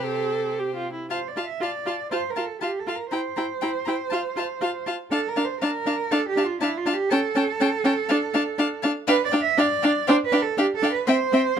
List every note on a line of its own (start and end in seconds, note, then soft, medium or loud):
0.00 0.91 C3 soft
0.00 0.82 G4 soft
0.00 0.86 C5 soft
0.07 0.61 A4 medium
0.59 0.76 G4 soft
0.76 0.93 F4 soft
0.93 1.09 E4 soft
1.10 1.18 F4 soft
1.10 1.29 C5 medium
1.10 1.19 F5 soft
1.10 1.18 A5 soft
1.28 1.45 D5 medium
1.36 1.44 F4 soft
1.36 1.45 F5 soft
1.36 1.45 A5 soft
1.46 1.63 E5 medium
1.60 1.68 F4 soft
1.60 2.11 D5 medium
1.60 1.71 F5 soft
1.60 1.70 A5 soft
1.86 1.94 F4 soft
1.86 1.95 F5 soft
1.86 1.95 A5 soft
2.11 2.19 F4 medium
2.11 2.31 C5 medium
2.11 2.21 F5 soft
2.11 2.20 A5 soft
2.30 2.47 A#4 medium
2.36 2.44 F4 soft
2.36 2.45 F5 soft
2.36 2.44 A5 soft
2.46 2.61 A4 medium
2.61 2.70 F4 soft
2.61 2.81 G4 medium
2.61 2.71 F5 soft
2.61 2.69 A5 soft
2.79 2.97 A4 medium
2.87 2.95 F4 soft
2.87 2.97 F5 soft
2.87 2.96 A5 soft
2.95 3.11 A#4 medium
3.11 3.20 E4 soft
3.11 4.83 C5 medium
3.11 3.21 G5 soft
3.11 3.19 A#5 soft
3.36 3.45 E4 medium
3.36 3.45 G5 soft
3.36 3.44 A#5 soft
3.61 3.70 E4 medium
3.61 3.69 G5 soft
3.61 3.70 A#5 soft
3.85 3.95 E4 medium
3.85 3.96 G5 soft
3.85 3.93 A#5 soft
4.10 4.20 F4 medium
4.10 4.21 F5 soft
4.10 4.18 A5 medium
4.36 4.44 F4 soft
4.36 4.46 F5 soft
4.36 4.45 A5 medium
4.61 4.69 F4 medium
4.61 4.71 F5 medium
4.61 4.70 A5 soft
4.87 4.95 F4 soft
4.87 4.95 F5 soft
4.87 4.95 A5 soft
5.11 5.19 D4 medium
5.11 5.30 A4 medium
5.11 5.20 F5 medium
5.11 5.20 A5 medium
5.28 5.46 A#4 medium
5.36 5.44 D4 medium
5.36 5.45 F5 medium
5.36 5.44 A5 soft
5.45 5.60 C5 medium
5.61 5.70 D4 medium
5.61 6.12 A#4 medium
5.61 5.70 F5 medium
5.61 5.71 A5 medium
5.86 5.94 D4 medium
5.86 5.95 F5 medium
5.86 5.95 A5 soft
6.11 6.19 D4 medium
6.11 6.28 A4 medium
6.11 6.19 F5 medium
6.11 6.20 A5 medium
6.29 6.47 G4 medium
6.36 6.44 D4 medium
6.36 6.45 F5 soft
6.36 6.45 A5 medium
6.45 6.60 F4 medium
6.61 6.69 D4 medium
6.61 6.79 E4 medium
6.61 6.71 F5 medium
6.61 6.69 A5 medium
6.77 6.95 F4 medium
6.86 6.94 D4 medium
6.86 6.95 F5 medium
6.86 6.94 A5 medium
6.94 7.11 G4 medium
7.10 7.20 C#4 medium
7.10 8.84 A4 medium
7.10 7.19 G5 medium
7.10 7.19 A5 medium
7.35 7.43 C#4 medium
7.35 7.44 G5 medium
7.35 7.43 A5 medium
7.60 7.69 C#4 medium
7.60 7.69 G5 medium
7.60 7.68 A5 medium
7.84 7.92 C#4 medium
7.84 7.93 G5 medium
7.84 7.93 A5 medium
8.09 8.18 D4 medium
8.09 8.17 F5 medium
8.09 8.17 A5 medium
8.34 8.42 D4 medium
8.34 8.42 F5 medium
8.34 8.42 A5 medium
8.58 8.66 D4 medium
8.58 8.67 F5 medium
8.58 8.66 A5 medium
8.82 8.92 D4 medium
8.82 8.91 F5 medium
8.82 8.90 A5 medium
9.07 9.16 D4 medium
9.07 9.24 B4 loud
9.07 9.16 F5 medium
9.07 9.15 G5 medium
9.25 9.32 D5 loud
9.31 9.41 D4 medium
9.31 9.41 F5 medium
9.31 9.39 G5 medium
9.42 9.59 E5 loud
9.57 9.65 D4 medium
9.57 10.08 D5 loud
9.57 9.67 F5 medium
9.57 9.66 G5 medium
9.82 9.92 D4 medium
9.82 9.91 F5 medium
9.82 9.90 G5 medium
10.07 10.17 D4 medium
10.07 10.15 C5 loud
10.07 10.15 F5 medium
10.07 10.15 G5 medium
10.26 10.44 B4 loud
10.32 10.40 D4 medium
10.32 10.40 F5 medium
10.32 10.40 G5 medium
10.42 10.58 A4 medium
10.57 10.65 D4 medium
10.57 10.65 G4 loud
10.57 10.66 F5 medium
10.57 10.66 G5 medium
10.76 10.92 A4 loud
10.82 10.90 D4 medium
10.82 10.91 F5 medium
10.82 10.91 G5 medium
10.92 11.08 B4 medium
11.07 11.15 C4 medium
11.07 11.59 C5 loud
11.07 11.16 E5 medium
11.07 11.15 G5 medium
11.32 11.40 C4 medium
11.32 11.41 E5 medium
11.32 11.41 G5 medium